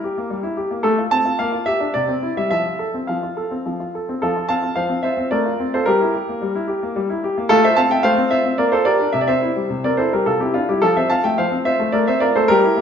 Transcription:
Already playing: A#4
0.04 G4
0.18 A#3
0.30 G3
0.43 E4
0.57 G4
0.71 A#3
0.83 A3 A4
0.98 F4
1.11 C4 A5
1.25 F4
1.39 A#3 F5
1.52 F4
1.66 G4 E5
1.80 D4
1.94 C3 D5
2.08 C4
2.23 E4
2.37 G3 E5
2.51 F3 E5
2.66 F4
2.79 A4
2.94 C4
3.07 F3 F5
3.23 F4
3.37 A4
3.51 C4
3.66 F3
3.80 F4
3.95 A4
4.09 C4
4.22 F3 F4 A4
4.37 F4
4.49 C4 F5 A5
4.63 F4
4.76 F3 C5 F5
4.89 C4
5.03 F4 C5 E5
5.17 C4
5.31 A3 A#4 D5
5.45 F4
5.60 C4
5.74 F4 A4 C5
5.86 G3 G4 A#4
6.01 E4
6.14 G4
6.29 A#3
6.42 G3
6.55 E4
6.68 G4
6.83 A#3
6.96 G3
7.10 E4
7.24 G4
7.38 A#3
7.49 A3 F4 A4
7.64 F4 C5 E5
7.76 C4 F5 A5
7.91 F4 E5 G5
8.03 A3 C5 F5
8.18 C4
8.31 F4 C5 E5
8.45 C4
8.58 A#3 A#4 D5
8.72 F4 A4 C5
8.85 G4 A#4 D5
9.00 D4
9.13 C3 E5
9.21 D5
9.28 C4 C5 E5
9.42 E4
9.56 G3
9.70 C3
9.84 C4 A#4 D5
9.97 E4 A4 C5
10.13 G3 G4 A#4
10.26 C3 F4 A4
10.41 C4 E4 G4
10.54 D4 E4 F4
10.69 G3 E4 G4
10.82 F3 F4 A4
10.97 C4 C5 E5
11.10 F4 F5 A5
11.24 A3 E5 G5
11.38 F3 C5 F5
11.52 C4
11.65 F4 C5 E5
11.80 A3
11.92 A3 A#4 D5
12.08 C4 C5 E5
12.20 F4 A#4 D5
12.36 A3 A4 C5
12.48 G3 G4 A#4
12.64 E4
12.77 A#3

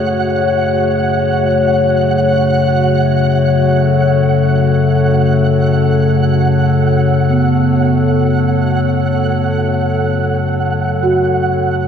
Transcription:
Already playing: F#2 C#3 A3 F#4 G#4 C#5 F#5
3.49 A4
7.30 B3
11.03 F#4

